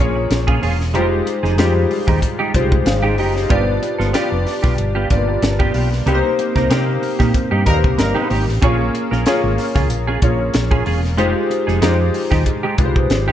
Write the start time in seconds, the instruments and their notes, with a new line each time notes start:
Already playing: grand piano C5
0.00 fingered electric bass A#1, grand piano A#3 C#4 F4 G#4 C#5
0.16 muted clean electric guitar stroke
0.30 fingered electric bass A#1, muted clean electric guitar stroke, snare, closed hi-hat
0.47 clean electric guitar C#4 F4 G#4, kick
0.62 fingered electric bass E1, clean electric guitar C#4 F4 G#4, open hi-hat
0.79 muted clean electric guitar stroke, snare
0.94 fingered electric bass F1, grand piano G3 D#4 F4 G4 C5, clean electric guitar G#3 D#4 G4, closed hi-hat
1.01 grand piano G#3
1.11 muted clean electric guitar stroke
1.26 muted clean electric guitar stroke, closed hi-hat
1.43 fingered electric bass F1, clean electric guitar G#3 D#4 G#4, snare
1.58 fingered electric bass F2, grand piano G3 D#4 F4 G4 C5, clean electric guitar G#3 D#4 G4, snare, closed hi-hat
1.65 grand piano G#3
1.76 muted clean electric guitar stroke
1.90 muted clean electric guitar stroke, open hi-hat
2.07 fingered electric bass D#2, clean electric guitar G#3 D#4 G4, kick
2.22 muted clean electric guitar stroke, kick, closed hi-hat
2.39 clean electric guitar G#3 D#4 G4
2.53 fingered electric bass C2, grand piano G3 D#4 F4 G4 C5, muted clean electric guitar stroke, kick, closed hi-hat
2.61 grand piano G#3
2.71 muted clean electric guitar stroke, kick
2.86 fingered electric bass G#1, grand piano G#4 F5, muted clean electric guitar stroke, snare, closed hi-hat
3.03 clean electric guitar G#3 D#4 G4
3.18 fingered electric bass F#1, clean electric guitar G#3 D#4 G4, grand piano G4 D#5, open hi-hat
3.35 grand piano D#4 C5, muted clean electric guitar stroke, snare
3.49 fingered electric bass G1, clean electric guitar B3 F4 G4, grand piano B3 D4 F4 G4 D5, kick, closed hi-hat
3.67 muted clean electric guitar stroke
3.82 muted clean electric guitar stroke, closed hi-hat
3.99 fingered electric bass G1, clean electric guitar B3 F4 A4, snare
4.13 grand piano B3 D4 F4 G4 D5, clean electric guitar B3 F4 G4, snare, closed hi-hat
4.31 fingered electric bass F1, muted clean electric guitar stroke
4.46 muted clean electric guitar stroke, snare, open hi-hat
4.63 fingered electric bass B1, clean electric guitar B3 F4 G4, kick, snare
4.78 fingered electric bass G1, muted clean electric guitar stroke, closed hi-hat
4.95 clean electric guitar B3 F4 G4
5.10 fingered electric bass G1, grand piano A#3 D4 F4 G4 D5, muted clean electric guitar stroke, kick, closed hi-hat
5.17 grand piano B3
5.28 muted clean electric guitar stroke
5.42 fingered electric bass G1, muted clean electric guitar stroke, snare, closed hi-hat
5.59 clean electric guitar B3 F4 G4, kick
5.74 fingered electric bass B1, clean electric guitar B3 F4 G4, open hi-hat
5.92 muted clean electric guitar stroke, snare
6.06 fingered electric bass C2, clean electric guitar A#3 D#4 G4, grand piano A#3 C4 D#4 G4 B4, closed hi-hat
6.15 grand piano C5
6.24 muted clean electric guitar stroke
6.39 muted clean electric guitar stroke, closed hi-hat
6.56 fingered electric bass C2, clean electric guitar A#3 D#4 A#4, kick, snare
6.70 fingered electric bass C3, clean electric guitar A#3 D#4 G4, grand piano A#3 C4 D#4 G4 C5, snare, closed hi-hat
6.87 muted clean electric guitar stroke
7.02 muted clean electric guitar stroke, open hi-hat
7.19 fingered electric bass A#2, clean electric guitar A#3 D#4 G4, kick, snare
7.34 muted clean electric guitar stroke, kick, closed hi-hat
7.51 fingered electric bass G2, clean electric guitar A#3 D#4 G4
7.66 fingered electric bass D#2, horn section G3 A#3 D#4 A#4, grand piano A#3 C4 D#4 G4 B4, muted clean electric guitar stroke, kick, closed hi-hat
7.74 grand piano C5
7.83 fingered electric bass C2, muted clean electric guitar stroke, kick
7.98 fingered electric bass G1, horn section G3 A#3 D#4 A#4, muted clean electric guitar stroke, snare, closed hi-hat
8.15 clean electric guitar A#3 D#4 G4
8.30 fingered electric bass G#1, clean electric guitar A#3 D#4 G4, open hi-hat
8.47 fingered electric bass A1, muted clean electric guitar stroke, snare
8.62 fingered electric bass A#1, grand piano A#3 C#4 F4 G#4 C#5, clean electric guitar C#4 F4 G#4, kick, closed hi-hat
8.79 muted clean electric guitar stroke
8.94 muted clean electric guitar stroke, closed hi-hat
9.11 fingered electric bass A#1, clean electric guitar C#4 F4 A#4, snare
9.26 grand piano A#3 C#4 F4 G#4 C#5, clean electric guitar C#4 F4 G#4, snare, closed hi-hat
9.43 fingered electric bass G#1, muted clean electric guitar stroke
9.58 muted clean electric guitar stroke, snare, open hi-hat
9.75 fingered electric bass C#2, clean electric guitar C#4 F4 G#4, kick, snare
9.90 fingered electric bass A#1, muted clean electric guitar stroke, closed hi-hat
10.07 clean electric guitar C#4 F4 G#4
10.22 fingered electric bass A#1, grand piano A#3 C#4 F4 G#4 C#5, kick, closed hi-hat
10.39 muted clean electric guitar stroke
10.54 fingered electric bass A#1, muted clean electric guitar stroke, snare, closed hi-hat
10.71 clean electric guitar C#4 F4 G#4, kick
10.85 fingered electric bass E1, clean electric guitar C#4 F4 G#4, open hi-hat
11.03 muted clean electric guitar stroke, snare
11.17 fingered electric bass F1, grand piano G#3 D#4 F4 G4 C5, clean electric guitar G#3 D#4 G4, closed hi-hat
11.35 muted clean electric guitar stroke
11.50 muted clean electric guitar stroke, closed hi-hat
11.67 fingered electric bass F1, clean electric guitar G#3 D#4 G#4, snare
11.82 fingered electric bass F2, grand piano G#3 D#4 F4 G4 C5, clean electric guitar G#3 D#4 G4, snare, closed hi-hat
11.99 muted clean electric guitar stroke
12.14 muted clean electric guitar stroke, open hi-hat
12.31 fingered electric bass D#2, clean electric guitar G#3 D#4 G4, kick, snare
12.46 muted clean electric guitar stroke, kick, closed hi-hat
12.63 clean electric guitar G#3 D#4 G4
12.78 fingered electric bass C2, grand piano G#3 D#4 F4 G4 B4, muted clean electric guitar stroke, kick, closed hi-hat
12.85 grand piano C5
12.96 muted clean electric guitar stroke, kick
13.10 fingered electric bass G#1, muted clean electric guitar stroke, snare, closed hi-hat
13.28 clean electric guitar G#3 D#4 G4